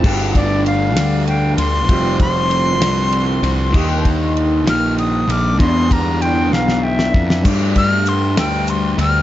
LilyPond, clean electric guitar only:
\new Staff \with { instrumentName = "Clean electric guitar" } { \time 6/8 \key f \lydian \tempo 4. = 65 <g a d' g'>2. | <f g c' g'>2. | <ees bes ees' g'>2. | <e b d' g'>2. |
<g a d' g'>2. | }